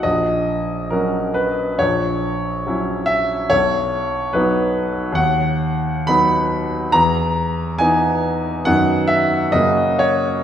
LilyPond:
<<
  \new Staff \with { instrumentName = "Grand piano" } { \time 2/4 \key b \major \tempo 4 = 70 dis''4 ais'8 b'8 | cis''4. e''8 | cis''4 b'8 r8 | fis''4 b''4 |
ais''4 gis''4 | fis''8 e''8 dis''8 cis''8 | }
  \new Staff \with { instrumentName = "Grand piano" } { \clef bass \time 2/4 \key b \major ais,,4 <fis cis' fis'>4 | ais,,4 <fis cis' e'>4 | b,,4 <fis b dis'>4 | dis,4 <fis b dis'>4 |
e,4 <e b dis'>4 | <fis, dis b dis'>4 <fis, cis ais fis'>4 | }
>>